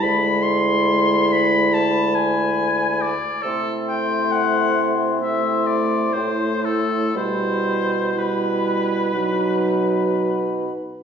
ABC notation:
X:1
M:4/4
L:1/8
Q:1/4=67
K:Ador
V:1 name="Flute"
b6- b z | c'4 c'2 c'2 | b2 b2 b3 z |]
V:2 name="Oboe"
b c'2 b a ^g2 d | A g f z e d c A | c2 B4- B z |]
V:3 name="Clarinet"
E6- E z | E4 E2 E2 | E2 E2 ^D3 z |]
V:4 name="French horn" clef=bass
^G,6- G, z | A,4 A,2 A,2 | G,2 G,2 F,3 z |]
V:5 name="Bassoon" clef=bass
D,,6- D,, z | C,6 A,,2 | B,,4 B,,3 z |]